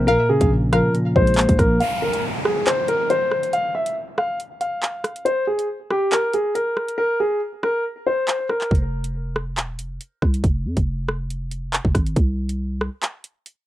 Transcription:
Already playing: A#1
0.07 A#2 A#4 F5, closed hi-hat
0.29 C#3 G#4
0.41 A#1, kick, closed hi-hat
0.51 A#2
0.73 F3 A#4 F5, cross-stick, closed hi-hat
0.94 A#2, closed hi-hat
1.16 A#1 G#3 C5, kick
1.27 closed hi-hat
1.34 closed hi-hat
1.37 A#2, clap, closed hi-hat
1.41 closed hi-hat
1.49 A#1, kick, closed hi-hat
1.59 A#1 A#3 A#4, kick, cross-stick, closed hi-hat
1.80 F5, closed hi-hat, downlifter
2.02 A#4
2.13 closed hi-hat
2.45 G#4, cross-stick
2.67 C5, clap, closed hi-hat
2.88 A#4, closed hi-hat
3.10 C5, closed hi-hat
3.31 cross-stick
3.43 closed hi-hat
3.53 F5, closed hi-hat
3.75 E5
3.86 closed hi-hat
4.18 F5, cross-stick
4.40 closed hi-hat
4.61 F5, closed hi-hat
4.83 clap
5.04 cross-stick, closed hi-hat
5.16 closed hi-hat
5.25 C5, closed hi-hat
5.47 G#4
5.59 closed hi-hat
5.91 G4, cross-stick
6.12 A#4, clap, closed hi-hat
6.33 G#4, closed hi-hat
6.55 A#4, closed hi-hat
6.77 cross-stick
6.88 closed hi-hat
6.98 A#4
7.20 G#4
7.63 A#4, cross-stick
8.07 C5
8.28 clap
8.49 A#4, cross-stick
8.61 clap
8.71 F1, kick, closed hi-hat
9.04 closed hi-hat
9.36 cross-stick
9.57 E1, clap, closed hi-hat
9.79 F1, closed hi-hat
10.01 closed hi-hat
10.22 C2, kick, cross-stick
10.34 closed hi-hat
10.44 F1, kick, closed hi-hat
10.65 F2
10.77 F1, kick, closed hi-hat
11.09 cross-stick
11.30 closed hi-hat
11.51 closed hi-hat
11.73 clap
11.85 F1, kick
11.95 G#1, kick, cross-stick, closed hi-hat
12.07 closed hi-hat
12.16 C2, kick, closed hi-hat
12.49 closed hi-hat
12.81 cross-stick
13.03 clap, closed hi-hat
13.24 closed hi-hat
13.46 closed hi-hat

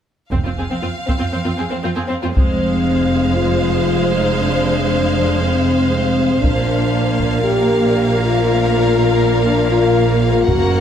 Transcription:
0.31 F1 F2 C4 F5, taiko
0.44 F2 C4 F4
0.57 F2 C4 G#4
0.70 F2 C4
0.82 F2 C4 F4
1.06 F2 C4, taiko
1.18 F2 C4 F4
1.32 F2 C4
1.44 F2 C4 F4
1.57 F2 C4 G#4
1.70 F2 C4
1.83 F2 C4 F4
1.95 F2 C4 G#4
2.08 F2 C4
2.22 F2 C4 F4
2.33 F1 F2 G#3 C4 C5 F5, taiko
3.35 F4
4.15 D#4
4.39 D4
5.42 C4
5.91 C4
6.41 A#1 A#2 A#3 D4 F5, taiko
7.20 taiko
7.43 G4 A#4
8.19 F4
8.44 F4
9.45 D4
9.71 F4
10.22 F4
10.47 F#1 F#2 A#3 F#4 A#4 F#5, taiko

